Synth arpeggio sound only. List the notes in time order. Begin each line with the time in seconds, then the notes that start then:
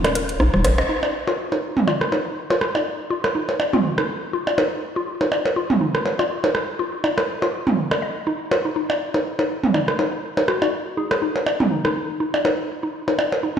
0.15 A#4
0.40 D#4
0.78 D#5
0.89 D#4
1.27 F4
1.52 D#4
1.87 F4
2.12 D#4
2.50 F4
2.75 D#4
3.10 F4
3.35 D#4
3.73 F4
3.98 D#4
4.33 F4
4.58 D#4
4.96 F4
5.21 D#4
5.56 F4
5.81 D#4
6.19 F4
6.44 D#4
6.79 F4
7.04 D#4
7.42 F4
7.67 D#4
8.02 D#5
8.27 D#4
8.51 F4
8.65 D#4
8.76 D#4
9.14 D#4
9.39 D#4
9.74 D#4
9.99 D#4
10.37 D#4
10.62 D#4
10.97 D#4
11.22 D#4
11.60 D#4
11.85 D#4
12.20 D#4
12.45 D#4
12.83 D#4
13.08 D#4
13.43 D#4